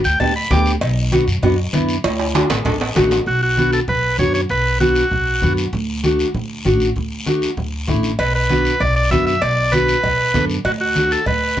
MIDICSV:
0, 0, Header, 1, 5, 480
1, 0, Start_track
1, 0, Tempo, 307377
1, 1268, Time_signature, 4, 2, 24, 8
1, 18115, End_track
2, 0, Start_track
2, 0, Title_t, "Transistor combo organ"
2, 0, Program_c, 0, 18
2, 75, Note_on_c, 0, 79, 89
2, 296, Note_off_c, 0, 79, 0
2, 309, Note_on_c, 0, 81, 91
2, 532, Note_off_c, 0, 81, 0
2, 559, Note_on_c, 0, 83, 90
2, 793, Note_on_c, 0, 86, 84
2, 801, Note_off_c, 0, 83, 0
2, 1125, Note_off_c, 0, 86, 0
2, 5113, Note_on_c, 0, 66, 91
2, 5331, Note_off_c, 0, 66, 0
2, 5354, Note_on_c, 0, 66, 92
2, 5794, Note_off_c, 0, 66, 0
2, 5827, Note_on_c, 0, 69, 93
2, 5934, Note_off_c, 0, 69, 0
2, 6072, Note_on_c, 0, 71, 100
2, 6514, Note_off_c, 0, 71, 0
2, 6544, Note_on_c, 0, 73, 95
2, 6761, Note_off_c, 0, 73, 0
2, 6780, Note_on_c, 0, 73, 98
2, 6888, Note_off_c, 0, 73, 0
2, 7031, Note_on_c, 0, 71, 104
2, 7473, Note_off_c, 0, 71, 0
2, 7501, Note_on_c, 0, 66, 77
2, 8640, Note_off_c, 0, 66, 0
2, 12794, Note_on_c, 0, 71, 102
2, 13013, Note_off_c, 0, 71, 0
2, 13041, Note_on_c, 0, 71, 95
2, 13750, Note_on_c, 0, 74, 97
2, 13775, Note_off_c, 0, 71, 0
2, 13973, Note_off_c, 0, 74, 0
2, 13992, Note_on_c, 0, 74, 101
2, 14212, Note_off_c, 0, 74, 0
2, 14227, Note_on_c, 0, 76, 95
2, 14450, Note_off_c, 0, 76, 0
2, 14469, Note_on_c, 0, 76, 95
2, 14703, Note_on_c, 0, 74, 100
2, 14715, Note_off_c, 0, 76, 0
2, 15177, Note_on_c, 0, 71, 107
2, 15200, Note_off_c, 0, 74, 0
2, 16320, Note_off_c, 0, 71, 0
2, 16635, Note_on_c, 0, 66, 94
2, 16742, Note_off_c, 0, 66, 0
2, 16876, Note_on_c, 0, 66, 91
2, 17361, Note_on_c, 0, 69, 90
2, 17367, Note_off_c, 0, 66, 0
2, 17578, Note_off_c, 0, 69, 0
2, 17601, Note_on_c, 0, 71, 88
2, 18115, Note_off_c, 0, 71, 0
2, 18115, End_track
3, 0, Start_track
3, 0, Title_t, "Nylon-string guitar"
3, 0, Program_c, 1, 24
3, 307, Note_on_c, 1, 59, 73
3, 316, Note_on_c, 1, 62, 66
3, 322, Note_on_c, 1, 67, 78
3, 476, Note_off_c, 1, 59, 0
3, 481, Note_off_c, 1, 62, 0
3, 484, Note_off_c, 1, 67, 0
3, 789, Note_on_c, 1, 59, 78
3, 797, Note_on_c, 1, 62, 72
3, 805, Note_on_c, 1, 67, 79
3, 1124, Note_off_c, 1, 59, 0
3, 1128, Note_off_c, 1, 62, 0
3, 1132, Note_off_c, 1, 67, 0
3, 1747, Note_on_c, 1, 59, 89
3, 1755, Note_on_c, 1, 62, 83
3, 1759, Note_on_c, 1, 66, 92
3, 1915, Note_off_c, 1, 59, 0
3, 1917, Note_off_c, 1, 62, 0
3, 1921, Note_off_c, 1, 66, 0
3, 2224, Note_on_c, 1, 59, 92
3, 2232, Note_on_c, 1, 62, 75
3, 2238, Note_on_c, 1, 66, 91
3, 2393, Note_off_c, 1, 59, 0
3, 2395, Note_off_c, 1, 62, 0
3, 2400, Note_off_c, 1, 66, 0
3, 2702, Note_on_c, 1, 59, 92
3, 2708, Note_on_c, 1, 62, 83
3, 2711, Note_on_c, 1, 64, 97
3, 3039, Note_off_c, 1, 59, 0
3, 3041, Note_off_c, 1, 62, 0
3, 3044, Note_off_c, 1, 64, 0
3, 3656, Note_on_c, 1, 57, 85
3, 3662, Note_on_c, 1, 62, 81
3, 3671, Note_on_c, 1, 66, 90
3, 3827, Note_off_c, 1, 57, 0
3, 3830, Note_off_c, 1, 62, 0
3, 3835, Note_off_c, 1, 66, 0
3, 4136, Note_on_c, 1, 57, 85
3, 4145, Note_on_c, 1, 62, 80
3, 4150, Note_on_c, 1, 69, 93
3, 4308, Note_off_c, 1, 57, 0
3, 4310, Note_off_c, 1, 62, 0
3, 4314, Note_off_c, 1, 69, 0
3, 4608, Note_on_c, 1, 57, 86
3, 4619, Note_on_c, 1, 62, 82
3, 4623, Note_on_c, 1, 66, 96
3, 4951, Note_off_c, 1, 57, 0
3, 4954, Note_off_c, 1, 62, 0
3, 4958, Note_off_c, 1, 66, 0
3, 5571, Note_on_c, 1, 59, 67
3, 5577, Note_on_c, 1, 62, 58
3, 5586, Note_on_c, 1, 66, 76
3, 5912, Note_off_c, 1, 59, 0
3, 5916, Note_off_c, 1, 62, 0
3, 5919, Note_off_c, 1, 66, 0
3, 6534, Note_on_c, 1, 59, 67
3, 6545, Note_on_c, 1, 62, 63
3, 6550, Note_on_c, 1, 66, 76
3, 6875, Note_off_c, 1, 59, 0
3, 6877, Note_off_c, 1, 62, 0
3, 6882, Note_off_c, 1, 66, 0
3, 7494, Note_on_c, 1, 59, 74
3, 7503, Note_on_c, 1, 62, 68
3, 7508, Note_on_c, 1, 66, 80
3, 7835, Note_off_c, 1, 59, 0
3, 7837, Note_off_c, 1, 62, 0
3, 7841, Note_off_c, 1, 66, 0
3, 8463, Note_on_c, 1, 59, 84
3, 8472, Note_on_c, 1, 62, 75
3, 8474, Note_on_c, 1, 66, 87
3, 8800, Note_off_c, 1, 59, 0
3, 8803, Note_off_c, 1, 62, 0
3, 8804, Note_off_c, 1, 66, 0
3, 9423, Note_on_c, 1, 57, 83
3, 9430, Note_on_c, 1, 62, 83
3, 9434, Note_on_c, 1, 66, 90
3, 9760, Note_off_c, 1, 57, 0
3, 9763, Note_off_c, 1, 62, 0
3, 9765, Note_off_c, 1, 66, 0
3, 10383, Note_on_c, 1, 57, 82
3, 10387, Note_on_c, 1, 62, 80
3, 10397, Note_on_c, 1, 66, 95
3, 10720, Note_off_c, 1, 57, 0
3, 10723, Note_off_c, 1, 62, 0
3, 10725, Note_off_c, 1, 66, 0
3, 11342, Note_on_c, 1, 57, 90
3, 11349, Note_on_c, 1, 62, 76
3, 11355, Note_on_c, 1, 66, 90
3, 11679, Note_off_c, 1, 57, 0
3, 11683, Note_off_c, 1, 62, 0
3, 11686, Note_off_c, 1, 66, 0
3, 12297, Note_on_c, 1, 57, 83
3, 12303, Note_on_c, 1, 62, 72
3, 12317, Note_on_c, 1, 64, 92
3, 12637, Note_off_c, 1, 57, 0
3, 12642, Note_off_c, 1, 62, 0
3, 12645, Note_off_c, 1, 64, 0
3, 13266, Note_on_c, 1, 59, 68
3, 13272, Note_on_c, 1, 62, 67
3, 13280, Note_on_c, 1, 66, 77
3, 13602, Note_off_c, 1, 59, 0
3, 13605, Note_off_c, 1, 62, 0
3, 13609, Note_off_c, 1, 66, 0
3, 14222, Note_on_c, 1, 59, 66
3, 14234, Note_on_c, 1, 62, 63
3, 14234, Note_on_c, 1, 66, 83
3, 14562, Note_off_c, 1, 59, 0
3, 14564, Note_off_c, 1, 62, 0
3, 14566, Note_off_c, 1, 66, 0
3, 15190, Note_on_c, 1, 59, 68
3, 15197, Note_on_c, 1, 62, 65
3, 15202, Note_on_c, 1, 66, 79
3, 15525, Note_off_c, 1, 59, 0
3, 15527, Note_off_c, 1, 62, 0
3, 15530, Note_off_c, 1, 66, 0
3, 16150, Note_on_c, 1, 59, 83
3, 16157, Note_on_c, 1, 62, 80
3, 16164, Note_on_c, 1, 69, 97
3, 16485, Note_off_c, 1, 59, 0
3, 16487, Note_off_c, 1, 62, 0
3, 16492, Note_off_c, 1, 69, 0
3, 17111, Note_on_c, 1, 57, 73
3, 17116, Note_on_c, 1, 62, 66
3, 17126, Note_on_c, 1, 66, 76
3, 17446, Note_off_c, 1, 57, 0
3, 17449, Note_off_c, 1, 62, 0
3, 17452, Note_off_c, 1, 66, 0
3, 18115, End_track
4, 0, Start_track
4, 0, Title_t, "Upright bass"
4, 0, Program_c, 2, 32
4, 76, Note_on_c, 2, 38, 88
4, 265, Note_off_c, 2, 38, 0
4, 315, Note_on_c, 2, 38, 95
4, 696, Note_off_c, 2, 38, 0
4, 790, Note_on_c, 2, 38, 98
4, 1173, Note_off_c, 2, 38, 0
4, 1267, Note_on_c, 2, 35, 114
4, 1842, Note_off_c, 2, 35, 0
4, 1986, Note_on_c, 2, 42, 95
4, 2178, Note_off_c, 2, 42, 0
4, 2224, Note_on_c, 2, 42, 94
4, 2608, Note_off_c, 2, 42, 0
4, 2711, Note_on_c, 2, 42, 98
4, 3092, Note_off_c, 2, 42, 0
4, 3187, Note_on_c, 2, 38, 116
4, 3761, Note_off_c, 2, 38, 0
4, 3904, Note_on_c, 2, 33, 95
4, 4095, Note_off_c, 2, 33, 0
4, 4148, Note_on_c, 2, 33, 87
4, 4529, Note_off_c, 2, 33, 0
4, 4625, Note_on_c, 2, 33, 101
4, 5007, Note_off_c, 2, 33, 0
4, 5102, Note_on_c, 2, 35, 92
4, 5870, Note_off_c, 2, 35, 0
4, 6063, Note_on_c, 2, 35, 82
4, 6545, Note_on_c, 2, 42, 96
4, 6569, Note_off_c, 2, 35, 0
4, 6928, Note_off_c, 2, 42, 0
4, 7023, Note_on_c, 2, 35, 99
4, 7791, Note_off_c, 2, 35, 0
4, 7981, Note_on_c, 2, 35, 83
4, 8464, Note_on_c, 2, 42, 86
4, 8488, Note_off_c, 2, 35, 0
4, 8848, Note_off_c, 2, 42, 0
4, 8946, Note_on_c, 2, 38, 103
4, 9713, Note_off_c, 2, 38, 0
4, 9911, Note_on_c, 2, 38, 91
4, 10390, Note_on_c, 2, 33, 92
4, 10414, Note_off_c, 2, 38, 0
4, 10772, Note_off_c, 2, 33, 0
4, 10870, Note_on_c, 2, 38, 92
4, 11636, Note_off_c, 2, 38, 0
4, 11824, Note_on_c, 2, 38, 91
4, 12302, Note_on_c, 2, 33, 88
4, 12325, Note_off_c, 2, 38, 0
4, 12687, Note_off_c, 2, 33, 0
4, 12784, Note_on_c, 2, 35, 96
4, 13553, Note_off_c, 2, 35, 0
4, 13745, Note_on_c, 2, 35, 90
4, 14227, Note_on_c, 2, 42, 94
4, 14251, Note_off_c, 2, 35, 0
4, 14611, Note_off_c, 2, 42, 0
4, 14708, Note_on_c, 2, 35, 106
4, 15476, Note_off_c, 2, 35, 0
4, 15667, Note_on_c, 2, 35, 90
4, 16147, Note_on_c, 2, 42, 102
4, 16171, Note_off_c, 2, 35, 0
4, 16532, Note_off_c, 2, 42, 0
4, 16631, Note_on_c, 2, 38, 100
4, 17398, Note_off_c, 2, 38, 0
4, 17589, Note_on_c, 2, 38, 87
4, 18094, Note_off_c, 2, 38, 0
4, 18115, End_track
5, 0, Start_track
5, 0, Title_t, "Drums"
5, 67, Note_on_c, 9, 73, 78
5, 223, Note_off_c, 9, 73, 0
5, 310, Note_on_c, 9, 74, 79
5, 313, Note_on_c, 9, 56, 94
5, 320, Note_on_c, 9, 63, 33
5, 320, Note_on_c, 9, 64, 85
5, 466, Note_off_c, 9, 74, 0
5, 469, Note_off_c, 9, 56, 0
5, 476, Note_off_c, 9, 63, 0
5, 476, Note_off_c, 9, 64, 0
5, 790, Note_on_c, 9, 73, 70
5, 791, Note_on_c, 9, 63, 81
5, 791, Note_on_c, 9, 64, 79
5, 792, Note_on_c, 9, 56, 73
5, 792, Note_on_c, 9, 66, 72
5, 946, Note_off_c, 9, 73, 0
5, 948, Note_off_c, 9, 63, 0
5, 948, Note_off_c, 9, 64, 0
5, 949, Note_off_c, 9, 56, 0
5, 949, Note_off_c, 9, 66, 0
5, 1028, Note_on_c, 9, 73, 74
5, 1184, Note_off_c, 9, 73, 0
5, 1269, Note_on_c, 9, 74, 75
5, 1270, Note_on_c, 9, 56, 111
5, 1279, Note_on_c, 9, 63, 39
5, 1425, Note_off_c, 9, 74, 0
5, 1426, Note_off_c, 9, 56, 0
5, 1435, Note_off_c, 9, 63, 0
5, 1750, Note_on_c, 9, 73, 79
5, 1751, Note_on_c, 9, 63, 86
5, 1753, Note_on_c, 9, 56, 74
5, 1906, Note_off_c, 9, 73, 0
5, 1907, Note_off_c, 9, 63, 0
5, 1909, Note_off_c, 9, 56, 0
5, 1993, Note_on_c, 9, 73, 82
5, 2149, Note_off_c, 9, 73, 0
5, 2232, Note_on_c, 9, 74, 73
5, 2234, Note_on_c, 9, 56, 90
5, 2237, Note_on_c, 9, 63, 36
5, 2237, Note_on_c, 9, 64, 86
5, 2388, Note_off_c, 9, 74, 0
5, 2390, Note_off_c, 9, 56, 0
5, 2393, Note_off_c, 9, 63, 0
5, 2393, Note_off_c, 9, 64, 0
5, 2703, Note_on_c, 9, 63, 94
5, 2703, Note_on_c, 9, 73, 71
5, 2710, Note_on_c, 9, 56, 71
5, 2859, Note_off_c, 9, 63, 0
5, 2859, Note_off_c, 9, 73, 0
5, 2866, Note_off_c, 9, 56, 0
5, 2945, Note_on_c, 9, 73, 81
5, 3101, Note_off_c, 9, 73, 0
5, 3186, Note_on_c, 9, 63, 39
5, 3188, Note_on_c, 9, 74, 75
5, 3190, Note_on_c, 9, 56, 119
5, 3190, Note_on_c, 9, 65, 92
5, 3342, Note_off_c, 9, 63, 0
5, 3344, Note_off_c, 9, 74, 0
5, 3346, Note_off_c, 9, 56, 0
5, 3346, Note_off_c, 9, 65, 0
5, 3427, Note_on_c, 9, 65, 91
5, 3583, Note_off_c, 9, 65, 0
5, 3660, Note_on_c, 9, 63, 89
5, 3664, Note_on_c, 9, 73, 76
5, 3672, Note_on_c, 9, 56, 76
5, 3672, Note_on_c, 9, 65, 112
5, 3816, Note_off_c, 9, 63, 0
5, 3820, Note_off_c, 9, 73, 0
5, 3828, Note_off_c, 9, 56, 0
5, 3828, Note_off_c, 9, 65, 0
5, 3900, Note_on_c, 9, 73, 83
5, 3905, Note_on_c, 9, 66, 101
5, 4057, Note_off_c, 9, 73, 0
5, 4061, Note_off_c, 9, 66, 0
5, 4137, Note_on_c, 9, 74, 77
5, 4140, Note_on_c, 9, 63, 36
5, 4140, Note_on_c, 9, 64, 88
5, 4148, Note_on_c, 9, 56, 90
5, 4148, Note_on_c, 9, 66, 92
5, 4294, Note_off_c, 9, 74, 0
5, 4296, Note_off_c, 9, 63, 0
5, 4296, Note_off_c, 9, 64, 0
5, 4304, Note_off_c, 9, 56, 0
5, 4304, Note_off_c, 9, 66, 0
5, 4388, Note_on_c, 9, 66, 105
5, 4545, Note_off_c, 9, 66, 0
5, 4619, Note_on_c, 9, 73, 77
5, 4620, Note_on_c, 9, 63, 85
5, 4626, Note_on_c, 9, 56, 69
5, 4626, Note_on_c, 9, 66, 85
5, 4775, Note_off_c, 9, 73, 0
5, 4776, Note_off_c, 9, 63, 0
5, 4782, Note_off_c, 9, 56, 0
5, 4782, Note_off_c, 9, 66, 0
5, 4856, Note_on_c, 9, 73, 75
5, 4863, Note_on_c, 9, 66, 69
5, 5013, Note_off_c, 9, 73, 0
5, 5019, Note_off_c, 9, 66, 0
5, 5095, Note_on_c, 9, 74, 67
5, 5102, Note_on_c, 9, 63, 35
5, 5252, Note_off_c, 9, 74, 0
5, 5258, Note_off_c, 9, 63, 0
5, 5579, Note_on_c, 9, 73, 69
5, 5581, Note_on_c, 9, 63, 78
5, 5735, Note_off_c, 9, 73, 0
5, 5738, Note_off_c, 9, 63, 0
5, 5818, Note_on_c, 9, 73, 70
5, 5974, Note_off_c, 9, 73, 0
5, 6056, Note_on_c, 9, 63, 32
5, 6056, Note_on_c, 9, 64, 83
5, 6058, Note_on_c, 9, 74, 69
5, 6213, Note_off_c, 9, 63, 0
5, 6213, Note_off_c, 9, 64, 0
5, 6214, Note_off_c, 9, 74, 0
5, 6535, Note_on_c, 9, 63, 78
5, 6535, Note_on_c, 9, 64, 69
5, 6537, Note_on_c, 9, 73, 72
5, 6691, Note_off_c, 9, 63, 0
5, 6691, Note_off_c, 9, 64, 0
5, 6693, Note_off_c, 9, 73, 0
5, 6777, Note_on_c, 9, 73, 66
5, 6933, Note_off_c, 9, 73, 0
5, 7015, Note_on_c, 9, 63, 34
5, 7018, Note_on_c, 9, 74, 69
5, 7172, Note_off_c, 9, 63, 0
5, 7174, Note_off_c, 9, 74, 0
5, 7502, Note_on_c, 9, 63, 88
5, 7505, Note_on_c, 9, 73, 73
5, 7658, Note_off_c, 9, 63, 0
5, 7661, Note_off_c, 9, 73, 0
5, 7738, Note_on_c, 9, 73, 74
5, 7894, Note_off_c, 9, 73, 0
5, 7977, Note_on_c, 9, 74, 69
5, 7985, Note_on_c, 9, 63, 32
5, 7985, Note_on_c, 9, 64, 77
5, 8133, Note_off_c, 9, 74, 0
5, 8142, Note_off_c, 9, 63, 0
5, 8142, Note_off_c, 9, 64, 0
5, 8461, Note_on_c, 9, 73, 65
5, 8466, Note_on_c, 9, 63, 80
5, 8466, Note_on_c, 9, 64, 75
5, 8617, Note_off_c, 9, 73, 0
5, 8622, Note_off_c, 9, 63, 0
5, 8622, Note_off_c, 9, 64, 0
5, 8702, Note_on_c, 9, 73, 74
5, 8858, Note_off_c, 9, 73, 0
5, 8943, Note_on_c, 9, 74, 69
5, 8948, Note_on_c, 9, 63, 37
5, 8948, Note_on_c, 9, 64, 78
5, 9100, Note_off_c, 9, 74, 0
5, 9104, Note_off_c, 9, 63, 0
5, 9104, Note_off_c, 9, 64, 0
5, 9428, Note_on_c, 9, 73, 78
5, 9431, Note_on_c, 9, 63, 87
5, 9584, Note_off_c, 9, 73, 0
5, 9587, Note_off_c, 9, 63, 0
5, 9670, Note_on_c, 9, 73, 70
5, 9826, Note_off_c, 9, 73, 0
5, 9908, Note_on_c, 9, 63, 33
5, 9908, Note_on_c, 9, 64, 85
5, 9909, Note_on_c, 9, 74, 66
5, 10064, Note_off_c, 9, 63, 0
5, 10064, Note_off_c, 9, 64, 0
5, 10065, Note_off_c, 9, 74, 0
5, 10386, Note_on_c, 9, 63, 88
5, 10386, Note_on_c, 9, 73, 73
5, 10542, Note_off_c, 9, 73, 0
5, 10543, Note_off_c, 9, 63, 0
5, 10622, Note_on_c, 9, 73, 71
5, 10778, Note_off_c, 9, 73, 0
5, 10864, Note_on_c, 9, 74, 71
5, 10873, Note_on_c, 9, 63, 37
5, 10873, Note_on_c, 9, 64, 73
5, 11020, Note_off_c, 9, 74, 0
5, 11029, Note_off_c, 9, 63, 0
5, 11029, Note_off_c, 9, 64, 0
5, 11344, Note_on_c, 9, 63, 82
5, 11345, Note_on_c, 9, 73, 73
5, 11500, Note_off_c, 9, 63, 0
5, 11501, Note_off_c, 9, 73, 0
5, 11588, Note_on_c, 9, 73, 76
5, 11744, Note_off_c, 9, 73, 0
5, 11827, Note_on_c, 9, 74, 67
5, 11828, Note_on_c, 9, 63, 32
5, 11828, Note_on_c, 9, 64, 78
5, 11983, Note_off_c, 9, 74, 0
5, 11984, Note_off_c, 9, 63, 0
5, 11984, Note_off_c, 9, 64, 0
5, 12303, Note_on_c, 9, 73, 66
5, 12306, Note_on_c, 9, 63, 82
5, 12306, Note_on_c, 9, 64, 72
5, 12459, Note_off_c, 9, 73, 0
5, 12462, Note_off_c, 9, 63, 0
5, 12462, Note_off_c, 9, 64, 0
5, 12542, Note_on_c, 9, 73, 69
5, 12698, Note_off_c, 9, 73, 0
5, 12786, Note_on_c, 9, 56, 111
5, 12786, Note_on_c, 9, 63, 36
5, 12789, Note_on_c, 9, 74, 72
5, 12942, Note_off_c, 9, 56, 0
5, 12942, Note_off_c, 9, 63, 0
5, 12945, Note_off_c, 9, 74, 0
5, 13265, Note_on_c, 9, 56, 71
5, 13268, Note_on_c, 9, 73, 71
5, 13271, Note_on_c, 9, 63, 85
5, 13421, Note_off_c, 9, 56, 0
5, 13424, Note_off_c, 9, 73, 0
5, 13427, Note_off_c, 9, 63, 0
5, 13511, Note_on_c, 9, 73, 75
5, 13667, Note_off_c, 9, 73, 0
5, 13748, Note_on_c, 9, 56, 82
5, 13748, Note_on_c, 9, 74, 68
5, 13752, Note_on_c, 9, 63, 33
5, 13752, Note_on_c, 9, 64, 85
5, 13904, Note_off_c, 9, 56, 0
5, 13904, Note_off_c, 9, 74, 0
5, 13908, Note_off_c, 9, 63, 0
5, 13908, Note_off_c, 9, 64, 0
5, 14227, Note_on_c, 9, 63, 80
5, 14227, Note_on_c, 9, 64, 72
5, 14230, Note_on_c, 9, 56, 66
5, 14236, Note_on_c, 9, 73, 64
5, 14384, Note_off_c, 9, 63, 0
5, 14384, Note_off_c, 9, 64, 0
5, 14387, Note_off_c, 9, 56, 0
5, 14392, Note_off_c, 9, 73, 0
5, 14472, Note_on_c, 9, 73, 69
5, 14628, Note_off_c, 9, 73, 0
5, 14707, Note_on_c, 9, 56, 110
5, 14710, Note_on_c, 9, 74, 71
5, 14712, Note_on_c, 9, 63, 36
5, 14863, Note_off_c, 9, 56, 0
5, 14866, Note_off_c, 9, 74, 0
5, 14869, Note_off_c, 9, 63, 0
5, 15186, Note_on_c, 9, 63, 87
5, 15191, Note_on_c, 9, 73, 78
5, 15194, Note_on_c, 9, 56, 70
5, 15342, Note_off_c, 9, 63, 0
5, 15347, Note_off_c, 9, 73, 0
5, 15350, Note_off_c, 9, 56, 0
5, 15436, Note_on_c, 9, 73, 76
5, 15592, Note_off_c, 9, 73, 0
5, 15671, Note_on_c, 9, 56, 83
5, 15673, Note_on_c, 9, 63, 35
5, 15673, Note_on_c, 9, 64, 82
5, 15673, Note_on_c, 9, 74, 72
5, 15827, Note_off_c, 9, 56, 0
5, 15829, Note_off_c, 9, 63, 0
5, 15829, Note_off_c, 9, 64, 0
5, 15829, Note_off_c, 9, 74, 0
5, 16150, Note_on_c, 9, 56, 67
5, 16151, Note_on_c, 9, 73, 65
5, 16153, Note_on_c, 9, 63, 83
5, 16153, Note_on_c, 9, 64, 73
5, 16306, Note_off_c, 9, 56, 0
5, 16307, Note_off_c, 9, 73, 0
5, 16309, Note_off_c, 9, 63, 0
5, 16309, Note_off_c, 9, 64, 0
5, 16390, Note_on_c, 9, 73, 71
5, 16546, Note_off_c, 9, 73, 0
5, 16628, Note_on_c, 9, 56, 108
5, 16629, Note_on_c, 9, 63, 36
5, 16629, Note_on_c, 9, 64, 71
5, 16631, Note_on_c, 9, 74, 74
5, 16784, Note_off_c, 9, 56, 0
5, 16785, Note_off_c, 9, 63, 0
5, 16785, Note_off_c, 9, 64, 0
5, 16787, Note_off_c, 9, 74, 0
5, 17109, Note_on_c, 9, 63, 86
5, 17110, Note_on_c, 9, 56, 70
5, 17113, Note_on_c, 9, 73, 75
5, 17265, Note_off_c, 9, 63, 0
5, 17266, Note_off_c, 9, 56, 0
5, 17269, Note_off_c, 9, 73, 0
5, 17350, Note_on_c, 9, 73, 75
5, 17506, Note_off_c, 9, 73, 0
5, 17588, Note_on_c, 9, 56, 86
5, 17591, Note_on_c, 9, 74, 69
5, 17592, Note_on_c, 9, 63, 33
5, 17592, Note_on_c, 9, 64, 86
5, 17744, Note_off_c, 9, 56, 0
5, 17747, Note_off_c, 9, 74, 0
5, 17748, Note_off_c, 9, 63, 0
5, 17748, Note_off_c, 9, 64, 0
5, 18066, Note_on_c, 9, 56, 62
5, 18115, Note_off_c, 9, 56, 0
5, 18115, End_track
0, 0, End_of_file